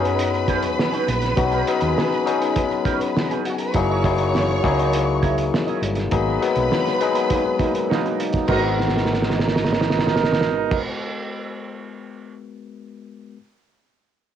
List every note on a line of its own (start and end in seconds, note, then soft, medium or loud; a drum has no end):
0.00 0.74 F#2 medium
0.00 1.36 F#3 medium
0.00 1.37 B3 medium
0.00 1.37 C#4 medium
0.00 1.38 D#4 medium
0.00 1.68 G#4 loud
0.00 3.35 B4 loud
0.00 3.77 B4 loud
0.00 3.35 B5 loud
0.05 0.22 C#4 soft
0.05 0.21 D#4 soft
0.05 0.21 G#4 medium
0.05 closed hi-hat medium
0.19 closed hi-hat loud
0.34 muted clean electric guitar stroke soft
0.34 closed hi-hat soft
0.48 0.69 C#4 medium
0.48 0.64 D#4 medium
0.48 0.64 A#4 medium
0.48 kick medium
0.48 closed hi-hat medium
0.62 muted clean electric guitar stroke medium
0.62 closed hi-hat medium
0.79 muted clean electric guitar stroke soft
0.79 snare loud
0.92 1.06 C#4 medium
0.92 1.07 D#4 medium
0.92 1.08 G#4 medium
0.92 closed hi-hat soft
1.08 1.32 A#1 loud
1.08 muted clean electric guitar stroke soft
1.08 closed hi-hat medium
1.22 muted clean electric guitar stroke soft
1.22 snare soft
1.22 closed hi-hat medium
1.36 1.62 B1 loud
1.36 1.59 F#3 medium
1.36 1.59 B3 medium
1.36 1.59 C#4 medium
1.36 1.59 D#4 medium
1.36 1.59 F#4 loud
1.36 muted clean electric guitar stroke soft
1.36 kick loud
1.36 closed hi-hat loud
1.51 1.65 C#4 medium
1.51 1.65 D#4 medium
1.51 1.66 G#4 medium
1.51 closed hi-hat soft
1.66 2.11 F#3 medium
1.66 2.11 B3 medium
1.66 2.11 C#4 medium
1.66 2.12 D#4 medium
1.66 2.12 G#4 loud
1.66 muted clean electric guitar stroke soft
1.66 closed hi-hat medium
1.81 1.94 D#2 medium
1.81 closed hi-hat soft
1.95 muted clean electric guitar stroke soft
1.95 snare loud
2.11 muted clean electric guitar stroke soft
2.11 closed hi-hat soft
2.25 3.14 F#3 medium
2.25 3.14 B3 medium
2.25 2.41 C#4 medium
2.25 3.14 C#4 medium
2.25 2.40 D#4 medium
2.25 3.14 D#4 medium
2.25 3.14 G#4 loud
2.25 2.39 G#4 medium
2.25 closed hi-hat medium
2.40 2.58 C#4 soft
2.40 2.57 D#4 medium
2.40 2.57 G#4 medium
2.40 closed hi-hat medium
2.56 kick loud
2.56 closed hi-hat loud
2.71 muted clean electric guitar stroke soft
2.71 closed hi-hat soft
2.85 3.06 C#4 medium
2.85 3.00 D#4 medium
2.85 3.00 A#4 medium
2.85 kick medium
2.85 closed hi-hat medium
3.00 muted clean electric guitar stroke soft
3.00 closed hi-hat medium
3.16 muted clean electric guitar stroke soft
3.16 snare loud
3.31 3.45 C#4 medium
3.31 3.45 D#4 medium
3.31 3.46 G#4 medium
3.31 closed hi-hat soft
3.45 3.53 F#4 medium
3.45 3.53 F#5 medium
3.45 muted clean electric guitar stroke soft
3.45 closed hi-hat medium
3.54 3.61 G#4 medium
3.54 3.61 G#5 medium
3.58 3.68 A#4 medium
3.58 3.67 A#5 medium
3.58 muted clean electric guitar stroke soft
3.58 closed hi-hat medium
3.68 3.75 B4 medium
3.68 3.75 B5 loud
3.74 4.60 F#1 loud
3.74 3.97 F#3 medium
3.74 3.97 A#3 medium
3.74 3.97 D#4 medium
3.74 3.97 E4 medium
3.74 3.97 G#4 loud
3.74 5.79 C#5 loud
3.74 5.79 C#6 loud
3.74 muted clean electric guitar stroke soft
3.74 kick loud
3.74 closed hi-hat loud
3.90 4.04 E4 medium
3.90 4.04 A#4 medium
3.90 4.05 D#5 medium
4.04 4.48 F#3 medium
4.04 4.48 A#3 medium
4.04 4.48 D#4 medium
4.04 4.48 E4 medium
4.04 4.49 G#4 loud
4.04 muted clean electric guitar stroke soft
4.04 kick medium
4.04 closed hi-hat medium
4.18 muted clean electric guitar stroke soft
4.18 closed hi-hat medium
4.34 muted clean electric guitar stroke soft
4.34 snare loud
4.49 muted clean electric guitar stroke soft
4.63 5.49 C#2 medium
4.63 5.51 F#3 loud
4.63 5.51 A#3 medium
4.63 5.51 D#4 medium
4.63 4.80 E4 medium
4.63 5.51 E4 medium
4.63 5.51 G#4 loud
4.63 4.79 A#4 medium
4.63 4.78 D#5 medium
4.63 kick loud
4.63 closed hi-hat medium
4.79 4.96 E4 soft
4.79 4.95 A#4 soft
4.79 4.95 D#5 medium
4.79 closed hi-hat medium
4.93 closed hi-hat loud
5.09 muted clean electric guitar stroke medium
5.22 5.43 E4 medium
5.22 5.38 A#4 medium
5.22 5.38 E5 medium
5.22 kick medium
5.22 closed hi-hat medium
5.38 muted clean electric guitar stroke soft
5.38 closed hi-hat medium
5.53 muted clean electric guitar stroke soft
5.53 snare loud
5.67 5.81 E4 medium
5.67 5.82 A#4 medium
5.67 5.83 D#5 medium
5.67 closed hi-hat soft
5.82 6.06 G1 medium
5.82 muted clean electric guitar stroke soft
5.82 closed hi-hat medium
5.95 muted clean electric guitar stroke soft
5.95 snare soft
5.95 closed hi-hat medium
6.11 6.36 G#1 loud
6.11 6.33 F#3 medium
6.11 6.34 A#3 medium
6.11 6.34 B3 medium
6.11 6.34 D#4 medium
6.11 6.34 G#4 medium
6.11 8.16 B4 loud
6.11 8.16 B5 loud
6.11 muted clean electric guitar stroke soft
6.11 kick loud
6.11 closed hi-hat medium
6.26 6.40 B3 medium
6.26 6.41 F#4 medium
6.26 6.42 A#4 medium
6.41 6.85 F#3 loud
6.41 6.85 G#3 medium
6.41 6.85 B3 medium
6.41 6.86 D#4 medium
6.41 6.86 B4 loud
6.41 muted clean electric guitar stroke soft
6.41 closed hi-hat medium
6.55 6.68 B1 medium
6.55 closed hi-hat soft
6.71 muted clean electric guitar stroke soft
6.71 snare loud
6.86 muted clean electric guitar stroke soft
6.86 snare soft
6.86 closed hi-hat soft
7.00 7.88 F#3 medium
7.00 7.88 G#3 medium
7.00 7.16 B3 medium
7.00 7.88 B3 medium
7.00 7.89 D#4 medium
7.00 7.15 F#4 medium
7.00 7.89 G#4 medium
7.00 7.14 A#4 medium
7.00 closed hi-hat medium
7.15 7.29 B3 soft
7.15 7.29 F#4 medium
7.15 7.30 A#4 medium
7.15 closed hi-hat medium
7.30 7.43 B2 medium
7.30 7.43 A#3 medium
7.30 7.43 D#4 medium
7.30 muted clean electric guitar stroke soft
7.30 kick loud
7.30 closed hi-hat loud
7.45 muted clean electric guitar stroke soft
7.59 7.72 B2 medium
7.59 7.72 A#3 medium
7.59 7.72 D#4 medium
7.59 kick loud
7.59 closed hi-hat medium
7.74 7.88 B3 medium
7.74 7.90 F#4 medium
7.74 7.90 A#4 medium
7.74 closed hi-hat medium
7.89 8.46 B2 medium
7.89 8.46 A#3 medium
7.89 8.46 D#4 medium
7.89 muted clean electric guitar stroke soft
7.89 snare loud
8.04 8.18 B3 medium
8.04 8.19 F#4 medium
8.04 8.20 A#4 medium
8.04 closed hi-hat soft
8.20 muted clean electric guitar stroke soft
8.20 closed hi-hat medium
8.33 muted clean electric guitar stroke soft
8.33 kick loud
8.33 snare soft
8.33 closed hi-hat medium
8.47 10.79 G#1 loud
8.47 10.79 B2 medium
8.47 10.78 G#3 medium
8.47 11.35 B3 medium
8.47 10.79 B3 medium
8.47 10.79 D#4 loud
8.47 10.79 F#4 medium
8.47 10.80 F#4 medium
8.47 11.35 F#4 medium
8.47 10.79 A#4 medium
8.47 10.79 D#5 medium
8.47 10.79 A#5 medium
8.47 kick loud
8.47 crash loud
8.51 10.81 A#4 medium
8.51 11.35 A#4 medium
8.80 snare soft
8.88 snare soft
8.97 snare medium
9.05 snare medium
9.13 snare medium
9.22 snare medium
9.30 snare medium
9.39 snare medium
9.48 snare medium
9.56 snare medium
9.65 snare medium
9.73 snare medium
9.81 snare medium
9.90 snare medium
9.99 snare medium
10.07 snare medium
10.16 snare loud
10.24 snare medium
10.33 snare medium
10.41 snare medium
10.71 kick loud
10.71 crash loud